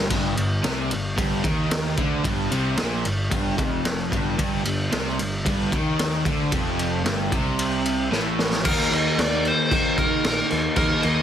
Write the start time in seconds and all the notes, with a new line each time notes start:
0.10 G1 G2, kick, ride, splash
0.35 G1 G2, ride
0.63 C2 C3, snare, ride
0.91 G1 G2, ride
1.16 G1 G2, kick, ride
1.43 D#2 D#3, kick, ride
1.71 snare, ride
1.97 D2 D3, kick, ride
2.23 G1 G2, kick, ride
2.50 C2 C3, ride
2.76 A#2, snare, ride
2.82 A#1
3.05 G1 G2, ride
3.30 G1 G2, kick, ride
3.57 F1 F2, kick, ride
3.85 snare, ride
4.12 G1 G2, kick, ride
4.38 G1 G2, kick, ride
4.65 G1 G2, ride
4.91 C2 C3, snare, ride
5.06 snare
5.19 G1 G2, ride
5.45 G1 G2, kick, ride
5.72 D#2 D#3, kick, ride
5.99 snare, ride
6.25 D2 D3, kick, ride
6.51 F1 F2, kick, ride
6.79 ride
7.04 G1 G2, snare, ride
7.31 C2 C3, kick, ride
7.59 ride
7.86 ride
8.11 A1 A2, snare
8.39 snare
8.52 snare
8.64 D#2 D#3 A#3 D#4 A#4, kick, crash
8.91 D#2 D#5, crash
9.18 D#2 D5, snare, crash
9.45 C5, crash
9.71 D#3 A#3 D#4, kick, crash
9.98 A#4, kick, crash
10.24 A#1, snare, crash
10.51 D#2, snare, crash
10.76 D#2 D#3 A#3 D#4 A#4, kick, crash
11.01 D#2 D#5, crash